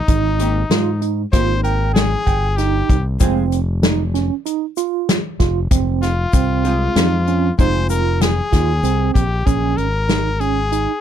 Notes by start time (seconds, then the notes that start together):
Already playing: D#4
0.08 G#1 D#4, kick, closed hi-hat
0.39 A#3 C4 D#4 G4, closed hi-hat
0.70 G#2 F4, snare, closed hi-hat
1.02 D#4, closed hi-hat
1.32 G#1 A#3 C4 D#4 F4 G4 C5, kick, snare, closed hi-hat
1.63 A#4 G5, closed hi-hat
1.94 G#4, snare, closed hi-hat
2.27 G1 G5, kick, closed hi-hat
2.57 D#4 G4, snare, closed hi-hat
2.89 C2, kick, closed hi-hat
3.20 F1 G#3 C4 F4 G#4, kick, closed hi-hat, shaker
3.52 closed hi-hat, shaker
3.83 D#4, snare, closed hi-hat, shaker
4.14 C#4, snare, closed hi-hat
4.46 D#4, closed hi-hat, shaker
4.77 F4, closed hi-hat, shaker
5.09 snare, closed hi-hat
5.40 F1 F4, kick, snare, closed hi-hat
5.71 F1 C4, kick, closed hi-hat
6.02 F4, snare, closed hi-hat
6.33 C2 C4, kick, closed hi-hat, shaker
6.65 G#3 C4 F4 G#4, closed hi-hat
6.96 F2 D#4, snare, closed hi-hat, shaker
7.27 C#4, closed hi-hat
7.58 F1 G#3 C4 D#4 F4 G#4 C5, kick, closed hi-hat, shaker
7.90 F4 A#4, closed hi-hat, shaker
8.21 G#4, snare, closed hi-hat, shaker
8.52 D#2 F4, kick, snare, closed hi-hat
8.83 C2 C4, closed hi-hat, shaker
9.14 A#1 G4, kick, closed hi-hat
9.46 A#1 C#4 G#4, kick, closed hi-hat
9.77 G#1 A#4, closed hi-hat
10.09 D#4, snare, closed hi-hat
10.40 C#4 G#4, closed hi-hat
10.72 D#4, closed hi-hat